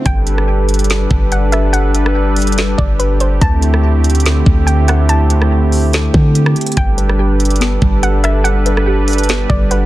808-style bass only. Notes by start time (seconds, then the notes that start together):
0.06 G1
1.11 G1
2.79 G1
3.42 D2
4.46 D2
6.14 D3
6.77 G1
7.82 G1
9.50 G1